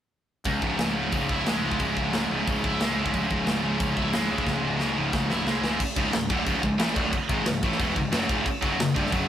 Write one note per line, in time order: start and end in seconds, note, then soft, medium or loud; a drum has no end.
0.44 0.61 C#1 medium
0.44 1.80 C#2 medium
0.44 kick medium
0.44 open hi-hat soft
0.61 0.77 C#1 medium
0.61 0.95 G#2 medium
0.61 kick medium
0.77 1.10 C#1 medium
0.77 1.14 C#3 medium
0.77 snare loud
0.77 open hi-hat soft
0.97 1.80 G#2 medium
1.12 1.44 C#1 medium
1.12 1.65 C#3 medium
1.12 kick medium
1.12 open hi-hat soft
1.29 2.65 E4 medium
1.29 kick medium
1.46 1.62 C#1 medium
1.46 2.82 G#3 medium
1.46 snare loud
1.46 open hi-hat medium
1.62 1.79 C#1 medium
1.62 2.14 C#3 medium
1.71 kick medium
1.79 2.11 C#1 medium
1.79 3.14 C#2 medium
1.79 kick medium
1.79 open hi-hat soft
1.97 2.31 G#2 medium
1.97 kick medium
2.12 2.28 C#1 medium
2.12 2.49 C#3 medium
2.12 snare medium
2.12 open hi-hat soft
2.30 2.46 C#1 medium
2.30 3.15 G#2 medium
2.47 2.63 C#1 medium
2.47 2.98 C#3 medium
2.47 kick medium
2.47 open hi-hat soft
2.64 2.79 C#1 medium
2.64 3.97 E4 medium
2.64 kick medium
2.80 2.96 C#2 medium
2.80 4.14 G#3 medium
2.80 snare loud
2.80 open hi-hat medium
2.96 3.12 C#1 medium
2.96 3.48 C#3 medium
3.06 kick medium
3.14 3.29 C#1 medium
3.14 4.46 C#2 medium
3.14 kick medium
3.14 open hi-hat soft
3.31 3.44 C#1 medium
3.31 3.63 G#2 medium
3.31 kick medium
3.45 3.77 C#1 medium
3.45 3.80 C#3 medium
3.45 snare medium
3.45 open hi-hat soft
3.64 4.47 G#2 medium
3.80 4.12 C#1 medium
3.80 4.29 C#3 medium
3.80 kick loud
3.80 open hi-hat soft
3.97 4.80 E4 medium
3.97 kick medium
4.13 4.28 C#1 medium
4.13 4.97 G#3 medium
4.13 snare loud
4.13 open hi-hat medium
4.29 4.45 C#1 medium
4.29 4.79 C#3 medium
4.38 kick medium
4.46 4.78 C#1 medium
4.46 5.30 C#2 medium
4.46 kick medium
4.46 snare soft
4.64 4.96 G#2 medium
4.80 4.96 C#1 medium
4.80 5.13 C#3 medium
4.80 snare medium
4.97 5.12 C#1 medium
4.97 5.80 G#2 medium
5.13 5.29 C#1 medium
5.13 5.62 C#3 medium
5.13 kick loud
5.13 snare medium
5.30 5.45 C#1 medium
5.30 5.80 E4 medium
5.30 snare medium
5.46 5.61 C#2 medium
5.46 5.80 G#3 medium
5.46 snare medium
5.62 5.78 C#1 medium
5.62 5.80 C#3 medium
5.62 snare medium
5.80 kick loud
5.80 crash loud
5.80 crash medium
5.96 6.12 C#1 medium
5.96 6.13 C#2 medium
5.96 6.13 G#2 medium
5.96 6.13 C#3 medium
5.96 kick loud
5.96 crash medium
6.13 6.28 C#1 medium
6.13 6.27 C#2 medium
6.13 6.27 G#2 medium
6.13 snare loud
6.13 crash medium
6.29 6.45 D1 medium
6.29 6.46 D2 medium
6.29 6.46 A2 medium
6.29 6.46 D3 loud
6.29 kick loud
6.29 crash medium
6.46 6.62 C#1 medium
6.46 6.61 C#2 medium
6.46 6.62 G#2 medium
6.46 6.63 C#3 medium
6.46 kick loud
6.46 crash medium
6.63 6.79 C#1 medium
6.63 6.76 C#2 medium
6.63 6.76 G#2 medium
6.63 kick medium
6.63 crash medium
6.78 6.95 A1 medium
6.78 6.95 A2 loud
6.78 6.95 E3 loud
6.78 6.95 A3 loud
6.78 snare loud
6.78 crash medium
6.95 7.12 D1 medium
6.95 7.12 D2 medium
6.95 7.12 A2 loud
6.95 7.12 D3 medium
6.95 kick loud
6.95 crash medium
7.13 kick medium
7.13 crash medium
7.29 7.45 G#1 medium
7.29 7.45 G#2 medium
7.29 7.46 D#3 medium
7.29 7.46 G#3 loud
7.29 kick loud
7.29 crash medium
7.46 7.62 C#1 medium
7.46 7.59 C#2 medium
7.46 7.59 G#2 medium
7.46 snare loud
7.46 crash medium
7.63 7.78 A1 medium
7.63 7.78 A2 medium
7.63 7.78 E3 loud
7.63 7.79 A3 medium
7.63 kick loud
7.63 crash medium
7.72 snare soft
7.79 7.95 E1 medium
7.79 7.95 E2 medium
7.79 7.95 B2 medium
7.79 7.95 E3 loud
7.79 kick loud
7.79 crash medium
7.95 8.11 C#1 medium
7.95 8.09 C#2 medium
7.95 8.10 G#2 medium
7.95 kick medium
7.95 crash medium
8.11 8.28 F#1 medium
8.11 8.28 F#2 loud
8.11 8.28 C#3 loud
8.11 8.28 F#3 loud
8.11 snare loud
8.11 crash medium
8.29 8.44 C#1 medium
8.29 8.45 C#2 medium
8.29 8.45 G#2 loud
8.29 8.45 C#3 loud
8.29 kick loud
8.29 crash medium
8.46 kick medium
8.46 crash medium
8.62 8.77 F#1 loud
8.62 8.77 F#2 medium
8.62 8.78 C#3 loud
8.62 8.78 F#3 loud
8.62 kick medium
8.62 crash medium
8.78 8.94 F#1 medium
8.78 8.92 F#2 medium
8.78 8.92 C#3 medium
8.78 snare loud
8.78 crash medium
8.89 snare soft
8.95 9.11 G1 medium
8.95 9.10 G2 medium
8.95 9.11 D3 loud
8.95 9.11 G3 medium
8.95 kick loud
8.95 crash medium
9.06 snare soft
9.11 9.27 F#1 medium
9.11 9.26 F#2 medium
9.11 9.27 C#3 medium
9.11 9.28 F#3 loud
9.11 kick loud
9.11 crash medium